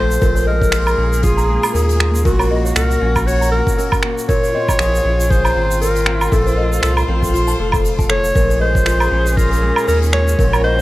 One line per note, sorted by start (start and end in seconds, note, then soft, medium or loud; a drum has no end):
0.00 0.18 A#1 medium
0.00 0.21 A#2 medium
0.00 0.53 A3 medium
0.00 1.04 C4 medium
0.00 0.18 F4 medium
0.00 0.72 F4 medium
0.00 0.19 A4 medium
0.00 0.24 A4 loud
0.00 0.23 C5 medium
0.00 0.44 C5 loud
0.00 0.23 D#5 medium
0.00 0.24 A5 loud
0.00 0.18 C6 medium
0.11 shaker medium
0.21 0.94 A#1 loud
0.21 2.24 A#2 medium
0.21 4.24 A#3 medium
0.21 2.23 G#4 medium
0.21 0.35 A#4 loud
0.21 kick loud
0.21 open hi-hat medium
0.21 shaker medium
0.36 0.46 C#5 medium
0.36 open hi-hat medium
0.36 shaker medium
0.47 1.48 G#3 medium
0.47 1.25 A#4 loud
0.47 0.60 D#5 medium
0.61 0.72 C#5 medium
0.61 kick loud
0.61 shaker medium
0.72 1.23 F4 medium
0.72 finger snap medium
0.72 open hi-hat medium
0.72 shaker medium
0.87 open hi-hat medium
0.87 low woodblock medium
0.87 shaker medium
0.98 1.58 A#1 loud
0.98 1.74 C#4 medium
1.12 open hi-hat medium
1.12 shaker medium
1.23 2.82 F4 medium
1.23 1.74 G#4 loud
1.23 kick loud
1.23 open hi-hat medium
1.23 shaker medium
1.37 1.48 A#5 loud
1.37 open hi-hat medium
1.37 shaker medium
1.49 1.99 G#3 medium
1.63 open hi-hat medium
1.63 low woodblock medium
1.63 shaker medium
1.73 2.27 D#2 medium
1.73 3.01 C#4 medium
1.73 2.22 G#4 medium
1.73 1.82 A#4 loud
1.73 open hi-hat medium
1.73 shaker medium
1.89 open hi-hat medium
1.89 shaker medium
2.00 2.30 G#3 medium
2.00 finger snap medium
2.15 shaker medium
2.25 2.72 A#1 medium
2.25 4.28 A#2 medium
2.25 4.27 F#4 medium
2.25 2.73 F#4 loud
2.25 2.39 A#4 loud
2.25 kick loud
2.25 open hi-hat medium
2.25 shaker medium
2.39 2.50 C#5 medium
2.39 open hi-hat medium
2.39 low woodblock medium
2.39 shaker soft
2.50 3.52 A#3 medium
2.50 2.64 D#5 medium
2.65 2.75 C#5 medium
2.65 shaker medium
2.76 2.97 C2 medium
2.76 3.27 F#4 medium
2.76 3.28 A#4 loud
2.76 finger snap medium
2.76 open hi-hat medium
2.76 shaker medium
2.90 open hi-hat medium
2.90 shaker soft
3.02 3.62 A#1 loud
3.02 3.78 C#4 medium
3.16 kick medium
3.16 open hi-hat soft
3.16 low woodblock medium
3.16 shaker medium
3.27 5.71 F#4 medium
3.27 3.51 C#5 loud
3.27 open hi-hat medium
3.27 shaker medium
3.41 3.52 A#5 loud
3.41 open hi-hat medium
3.41 shaker medium
3.52 4.03 A#3 medium
3.52 3.98 A#4 loud
3.67 kick loud
3.67 open hi-hat soft
3.67 shaker medium
3.78 4.60 C#4 medium
3.78 3.86 A#4 loud
3.78 open hi-hat medium
3.78 shaker medium
3.92 kick loud
3.92 open hi-hat medium
3.92 low woodblock medium
3.92 shaker soft
4.03 6.63 A#3 medium
4.03 finger snap medium
4.18 shaker medium
4.28 6.31 A#2 medium
4.28 8.32 F4 medium
4.28 4.42 A#4 loud
4.28 5.32 C#5 loud
4.28 kick loud
4.28 open hi-hat medium
4.28 shaker medium
4.43 4.54 C#5 medium
4.43 open hi-hat medium
4.43 shaker medium
4.54 5.56 C4 medium
4.54 4.68 D#5 medium
4.68 4.79 C#5 medium
4.68 kick loud
4.68 low woodblock medium
4.68 shaker medium
4.79 5.00 A#1 loud
4.79 5.30 G#4 medium
4.79 finger snap medium
4.79 open hi-hat medium
4.79 shaker medium
4.93 open hi-hat medium
4.93 shaker medium
5.05 5.52 A#1 loud
5.05 5.81 C#4 medium
5.19 open hi-hat soft
5.19 shaker medium
5.30 6.63 G#4 medium
5.30 5.81 C5 loud
5.30 kick loud
5.30 open hi-hat medium
5.30 shaker medium
5.44 5.55 A#5 medium
5.44 open hi-hat medium
5.44 low woodblock medium
5.44 shaker soft
5.56 6.28 G#1 medium
5.56 6.06 C4 medium
5.70 open hi-hat soft
5.70 shaker medium
5.81 7.14 C#4 medium
5.81 5.89 A#4 loud
5.81 6.33 A#4 loud
5.81 open hi-hat medium
5.81 shaker medium
5.95 open hi-hat medium
5.95 shaker medium
6.06 7.08 C4 medium
6.06 finger snap medium
6.21 low woodblock medium
6.21 shaker medium
6.32 6.79 A#1 medium
6.32 8.34 A#2 medium
6.32 6.82 A4 loud
6.32 8.33 A4 medium
6.32 6.45 A4 loud
6.32 8.33 C5 medium
6.32 kick loud
6.32 open hi-hat medium
6.32 shaker medium
6.46 6.57 C5 medium
6.46 open hi-hat medium
6.46 shaker medium
6.57 7.59 A3 medium
6.57 6.71 D#5 medium
6.71 6.82 C5 medium
6.71 shaker medium
6.82 7.04 C2 medium
6.82 7.33 F4 medium
6.82 6.94 A4 loud
6.82 finger snap medium
6.82 open hi-hat medium
6.82 shaker medium
6.97 open hi-hat medium
6.97 low woodblock medium
6.97 shaker soft
7.08 7.33 A#1 loud
7.08 9.18 C4 medium
7.08 7.81 F4 medium
7.22 kick medium
7.22 open hi-hat soft
7.22 shaker medium
7.33 7.54 A#1 medium
7.33 8.86 F4 medium
7.33 open hi-hat medium
7.33 shaker medium
7.48 7.58 A5 loud
7.48 open hi-hat medium
7.48 shaker medium
7.59 8.32 F1 medium
7.59 8.10 A3 medium
7.59 7.67 A4 medium
7.72 7.84 A4 medium
7.72 kick loud
7.72 open hi-hat soft
7.72 low woodblock medium
7.72 shaker medium
7.84 open hi-hat medium
7.84 shaker medium
7.99 8.05 A5 loud
7.99 kick loud
7.99 open hi-hat medium
7.99 shaker medium
8.10 8.67 A3 medium
8.10 8.23 A4 loud
8.10 8.57 C#5 loud
8.10 finger snap medium
8.24 open hi-hat medium
8.24 shaker medium
8.35 9.08 A#1 medium
8.35 10.37 A#2 medium
8.35 10.82 C#4 medium
8.35 10.37 G#4 medium
8.35 8.49 A#4 loud
8.35 kick loud
8.35 open hi-hat medium
8.35 shaker medium
8.49 8.60 C#5 medium
8.49 open hi-hat soft
8.49 shaker medium
8.60 9.61 G#3 medium
8.60 9.38 C5 loud
8.60 8.74 D#5 medium
8.75 8.85 C#5 medium
8.75 kick loud
8.75 shaker medium
8.86 9.37 F4 medium
8.86 finger snap medium
8.86 open hi-hat medium
8.86 shaker medium
9.00 open hi-hat medium
9.00 low woodblock medium
9.00 shaker soft
9.12 9.72 A#1 loud
9.12 9.87 C#4 medium
9.26 open hi-hat soft
9.26 shaker medium
9.37 10.82 F4 medium
9.37 9.87 A#4 loud
9.37 kick medium
9.37 open hi-hat medium
9.37 shaker medium
9.51 9.62 A#4 loud
9.51 open hi-hat medium
9.51 shaker medium
9.62 10.12 G#3 medium
9.76 open hi-hat soft
9.76 low woodblock medium
9.76 shaker medium
9.88 10.35 D#2 medium
9.88 10.82 C#4 medium
9.88 9.96 A#4 loud
9.88 9.99 A#4 loud
9.88 open hi-hat medium
9.88 shaker medium
10.02 open hi-hat medium
10.02 shaker medium
10.13 10.44 G#3 medium
10.13 10.60 C#5 loud
10.13 finger snap medium
10.28 shaker medium
10.39 10.82 A#1 medium
10.39 10.82 A#2 medium
10.39 10.82 F#4 medium
10.39 10.52 A#4 loud
10.39 kick loud
10.39 open hi-hat medium
10.39 shaker medium
10.53 10.64 C#5 medium
10.53 open hi-hat medium
10.53 low woodblock medium
10.53 shaker medium
10.64 10.82 A#3 medium
10.64 10.82 C5 loud
10.64 10.78 D#5 medium
10.78 10.82 C#5 medium